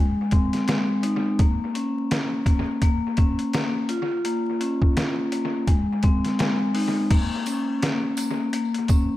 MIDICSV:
0, 0, Header, 1, 3, 480
1, 0, Start_track
1, 0, Key_signature, -5, "minor"
1, 0, Tempo, 714286
1, 935, Time_signature, 4, 2, 24, 8
1, 6162, End_track
2, 0, Start_track
2, 0, Title_t, "Vibraphone"
2, 0, Program_c, 0, 11
2, 0, Note_on_c, 0, 56, 86
2, 102, Control_c, 0, 64, 127
2, 217, Note_on_c, 0, 60, 75
2, 447, Note_off_c, 0, 56, 0
2, 455, Note_on_c, 0, 56, 82
2, 691, Note_on_c, 0, 63, 77
2, 933, Note_off_c, 0, 63, 0
2, 935, Note_off_c, 0, 56, 0
2, 937, Note_off_c, 0, 60, 0
2, 937, Note_on_c, 0, 58, 95
2, 943, Control_c, 0, 64, 0
2, 1058, Control_c, 0, 64, 127
2, 1171, Note_on_c, 0, 61, 76
2, 1645, Note_off_c, 0, 58, 0
2, 1653, Note_on_c, 0, 58, 75
2, 1891, Note_off_c, 0, 58, 0
2, 1893, Note_off_c, 0, 61, 0
2, 1899, Note_on_c, 0, 58, 93
2, 1905, Control_c, 0, 64, 0
2, 2010, Control_c, 0, 64, 127
2, 2134, Note_on_c, 0, 61, 74
2, 2371, Note_off_c, 0, 58, 0
2, 2380, Note_on_c, 0, 58, 87
2, 2614, Note_on_c, 0, 65, 91
2, 2615, Note_off_c, 0, 61, 0
2, 2618, Note_off_c, 0, 58, 0
2, 2625, Control_c, 0, 64, 0
2, 2743, Control_c, 0, 64, 127
2, 2856, Note_on_c, 0, 58, 90
2, 3096, Note_on_c, 0, 61, 84
2, 3573, Note_off_c, 0, 58, 0
2, 3581, Note_on_c, 0, 58, 76
2, 3814, Note_on_c, 0, 56, 89
2, 3815, Note_off_c, 0, 65, 0
2, 3816, Note_off_c, 0, 61, 0
2, 3818, Note_off_c, 0, 58, 0
2, 3824, Control_c, 0, 64, 0
2, 3949, Control_c, 0, 64, 127
2, 4055, Note_on_c, 0, 60, 73
2, 4286, Note_off_c, 0, 56, 0
2, 4294, Note_on_c, 0, 56, 79
2, 4530, Note_on_c, 0, 63, 77
2, 4773, Note_off_c, 0, 63, 0
2, 4775, Note_off_c, 0, 56, 0
2, 4776, Note_off_c, 0, 60, 0
2, 4776, Note_on_c, 0, 58, 91
2, 4785, Control_c, 0, 64, 0
2, 4893, Control_c, 0, 64, 127
2, 5011, Note_on_c, 0, 61, 78
2, 5485, Note_off_c, 0, 58, 0
2, 5493, Note_on_c, 0, 58, 78
2, 5731, Note_off_c, 0, 58, 0
2, 5733, Note_off_c, 0, 61, 0
2, 5739, Note_on_c, 0, 58, 93
2, 5745, Control_c, 0, 64, 0
2, 5858, Control_c, 0, 64, 127
2, 5974, Note_on_c, 0, 61, 74
2, 6162, Note_off_c, 0, 58, 0
2, 6162, Note_off_c, 0, 61, 0
2, 6162, End_track
3, 0, Start_track
3, 0, Title_t, "Drums"
3, 210, Note_on_c, 9, 42, 70
3, 217, Note_on_c, 9, 36, 89
3, 278, Note_off_c, 9, 42, 0
3, 284, Note_off_c, 9, 36, 0
3, 357, Note_on_c, 9, 42, 52
3, 363, Note_on_c, 9, 38, 34
3, 424, Note_off_c, 9, 42, 0
3, 430, Note_off_c, 9, 38, 0
3, 455, Note_on_c, 9, 42, 76
3, 462, Note_on_c, 9, 38, 118
3, 522, Note_off_c, 9, 42, 0
3, 529, Note_off_c, 9, 38, 0
3, 694, Note_on_c, 9, 42, 84
3, 761, Note_off_c, 9, 42, 0
3, 935, Note_on_c, 9, 42, 94
3, 936, Note_on_c, 9, 36, 109
3, 1002, Note_off_c, 9, 42, 0
3, 1003, Note_off_c, 9, 36, 0
3, 1177, Note_on_c, 9, 42, 77
3, 1244, Note_off_c, 9, 42, 0
3, 1419, Note_on_c, 9, 42, 97
3, 1422, Note_on_c, 9, 38, 105
3, 1486, Note_off_c, 9, 42, 0
3, 1489, Note_off_c, 9, 38, 0
3, 1653, Note_on_c, 9, 36, 93
3, 1655, Note_on_c, 9, 42, 81
3, 1720, Note_off_c, 9, 36, 0
3, 1722, Note_off_c, 9, 42, 0
3, 1893, Note_on_c, 9, 42, 93
3, 1894, Note_on_c, 9, 36, 88
3, 1960, Note_off_c, 9, 42, 0
3, 1961, Note_off_c, 9, 36, 0
3, 2130, Note_on_c, 9, 42, 71
3, 2137, Note_on_c, 9, 36, 96
3, 2197, Note_off_c, 9, 42, 0
3, 2204, Note_off_c, 9, 36, 0
3, 2277, Note_on_c, 9, 42, 53
3, 2344, Note_off_c, 9, 42, 0
3, 2375, Note_on_c, 9, 42, 79
3, 2382, Note_on_c, 9, 38, 119
3, 2442, Note_off_c, 9, 42, 0
3, 2449, Note_off_c, 9, 38, 0
3, 2613, Note_on_c, 9, 42, 81
3, 2680, Note_off_c, 9, 42, 0
3, 2855, Note_on_c, 9, 42, 91
3, 2922, Note_off_c, 9, 42, 0
3, 3097, Note_on_c, 9, 42, 80
3, 3164, Note_off_c, 9, 42, 0
3, 3237, Note_on_c, 9, 36, 89
3, 3304, Note_off_c, 9, 36, 0
3, 3338, Note_on_c, 9, 42, 96
3, 3341, Note_on_c, 9, 38, 109
3, 3405, Note_off_c, 9, 42, 0
3, 3409, Note_off_c, 9, 38, 0
3, 3575, Note_on_c, 9, 42, 84
3, 3643, Note_off_c, 9, 42, 0
3, 3813, Note_on_c, 9, 42, 93
3, 3814, Note_on_c, 9, 36, 89
3, 3881, Note_off_c, 9, 36, 0
3, 3881, Note_off_c, 9, 42, 0
3, 4050, Note_on_c, 9, 42, 71
3, 4057, Note_on_c, 9, 36, 89
3, 4117, Note_off_c, 9, 42, 0
3, 4124, Note_off_c, 9, 36, 0
3, 4197, Note_on_c, 9, 42, 53
3, 4203, Note_on_c, 9, 38, 34
3, 4264, Note_off_c, 9, 42, 0
3, 4270, Note_off_c, 9, 38, 0
3, 4295, Note_on_c, 9, 42, 81
3, 4302, Note_on_c, 9, 38, 119
3, 4362, Note_off_c, 9, 42, 0
3, 4369, Note_off_c, 9, 38, 0
3, 4533, Note_on_c, 9, 46, 57
3, 4600, Note_off_c, 9, 46, 0
3, 4774, Note_on_c, 9, 42, 98
3, 4775, Note_on_c, 9, 36, 115
3, 4775, Note_on_c, 9, 49, 97
3, 4842, Note_off_c, 9, 42, 0
3, 4843, Note_off_c, 9, 36, 0
3, 4843, Note_off_c, 9, 49, 0
3, 5013, Note_on_c, 9, 54, 48
3, 5017, Note_on_c, 9, 42, 82
3, 5080, Note_off_c, 9, 54, 0
3, 5085, Note_off_c, 9, 42, 0
3, 5258, Note_on_c, 9, 42, 96
3, 5262, Note_on_c, 9, 38, 110
3, 5326, Note_off_c, 9, 42, 0
3, 5329, Note_off_c, 9, 38, 0
3, 5490, Note_on_c, 9, 54, 67
3, 5495, Note_on_c, 9, 42, 84
3, 5557, Note_off_c, 9, 54, 0
3, 5562, Note_off_c, 9, 42, 0
3, 5732, Note_on_c, 9, 42, 92
3, 5800, Note_off_c, 9, 42, 0
3, 5876, Note_on_c, 9, 42, 53
3, 5943, Note_off_c, 9, 42, 0
3, 5970, Note_on_c, 9, 42, 71
3, 5976, Note_on_c, 9, 36, 95
3, 5976, Note_on_c, 9, 54, 54
3, 6037, Note_off_c, 9, 42, 0
3, 6043, Note_off_c, 9, 36, 0
3, 6044, Note_off_c, 9, 54, 0
3, 6162, End_track
0, 0, End_of_file